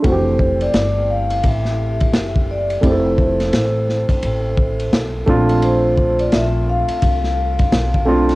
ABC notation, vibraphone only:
X:1
M:4/4
L:1/16
Q:"Swing 16ths" 1/4=86
K:F
V:1 name="Vibraphone"
c3 d3 f2 e6 d2 | c12 z4 | c3 d e2 f8- f2 |]